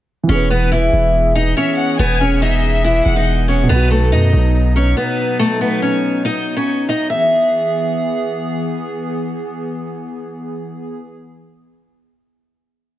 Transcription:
0.23 E3 B3
0.29 E1 E3 B3 C#4 G#4 C#5
0.35 B4
0.50 B3 B4
0.72 E3 E4
0.93 E1
1.35 D#4 D#5
1.57 C#4 C#5 E5
1.78 F#5
1.99 E1 B3 B4 G#5
2.21 C#4 C#5
2.42 D#4 D#5 E5
2.84 E3 E4
3.05 E1 F#5
3.16 D#4 D#5
3.48 C#4 C#5
3.63 B2 B3
3.69 B1 F#3 B3 D#4 B4
3.75 F#4
3.91 A3 A4
4.12 F#2 D#4 D#5
4.33 B1
4.76 C#4 C#5
4.97 B3 B4
5.39 A3 A4
5.61 B3 B4
5.82 C#4 C#5
6.25 D#4 D#5
6.57 C#4 C#5
6.89 D#4 D#5
7.10 E3 B3 G#4 E5

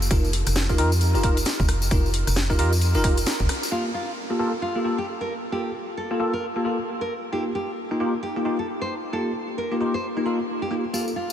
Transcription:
0.02 tambourine
0.11 F1 D#4 F4 G4 A#4, kick, closed hi-hat, tambourine
0.25 tambourine
0.33 open hi-hat
0.46 F1, cross-stick, closed hi-hat, tambourine
0.56 snare, tambourine
0.69 D#4 F4 G4 A#4, kick, tambourine
0.78 F2 D#4 F4 G4 A#4, open hi-hat
0.92 tambourine
1.01 closed hi-hat, tambourine
1.15 F1 D#4 F4 G4 A#4, tambourine
1.23 D#4 F4 G4 A#4, kick, open hi-hat
1.37 closed hi-hat, tambourine
1.45 snare, closed hi-hat, tambourine
1.60 F1, kick, tambourine
1.69 cross-stick, open hi-hat
1.82 tambourine
1.91 F1 D#4 F4 G4 A#4, kick, closed hi-hat, tambourine
2.06 tambourine
2.14 open hi-hat
2.27 F1, cross-stick, closed hi-hat, tambourine
2.36 snare, tambourine
2.50 D#4 F4 G4 A#4, kick, tambourine
2.59 F2 D#4 F4 G4 A#4, open hi-hat
2.73 tambourine
2.81 closed hi-hat, tambourine
2.95 F1 D#4 F4 G4 A#4, tambourine
3.04 D#4 F4 G4 A#4, kick, open hi-hat
3.17 closed hi-hat, tambourine
3.26 snare, closed hi-hat, tambourine
3.40 F1, kick, tambourine
3.49 cross-stick, open hi-hat
3.63 tambourine
3.72 A#3 F4 G4 A4
3.94 F4
4.30 A#3 F4 G4 A4
4.39 A#3 F4 G4 A4
4.62 F4
4.76 A#3 F4 G4 A4
4.84 A#3 F4 G4 A4
4.98 G4
5.21 A#4
5.52 A#3 F4 G4 A4
5.97 A4
6.11 A#3 F4 G4 A4
6.20 A#3 F4 G4 A4
6.33 A#4
6.56 A#3 F4 G4 A4
6.65 A#3 F4 G4 A4
7.01 A#4
7.32 A#3 D#4 F4 G4
7.55 G4
7.91 A#3 D#4 F4 G4
8.00 A#3 D#4 F4 G4
8.23 G4
8.36 A#3 D#4 F4 G4
8.45 A#3 D#4 F4 G4
8.59 A4
8.82 C5
9.13 A#3 D#4 F4 G4 A4
9.58 A#4
9.72 A#3 D#4 F4 G4
9.81 A#3 D#4 F4 G4
9.94 C5
10.17 A#3 D#4 F4 G4
10.26 A#3 D#4 F4 A4
10.62 G4
10.71 A#3 D#4 F4 G4
10.93 A#3 F4 G4 A4, tambourine
11.08 tambourine
11.16 F4

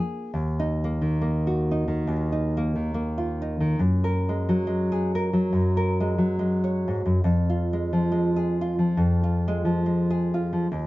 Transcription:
Already playing: F2 F3 A#3 D4 G#4
0.34 D#2
0.60 D#4
0.84 A#3
1.01 D#3
1.21 A#3
1.47 F#4
1.71 D#4
1.88 D#3
2.07 D#2
2.32 D#4
2.57 A#3
2.76 D#3
2.94 A#3
3.18 F4
3.42 D#4
3.60 D#3
3.79 F#2
4.04 A#4
4.29 G#3
4.49 F#3
4.67 G#3
4.92 G#4
5.15 A#4
5.33 F#3
5.53 F#2
5.77 A#4
6.00 G#3
6.18 F#3
6.39 G#3
6.64 C#5
6.88 G#2
7.06 F#2
7.24 F2
7.50 F4
7.73 G#3
7.93 F3
8.12 G#3
8.36 G#4
8.61 F4
8.79 F3
8.97 F2
9.24 F4
9.48 G#3
9.65 F3
9.86 G#3
10.10 G#4
10.34 F4
10.53 F3
10.72 D#2

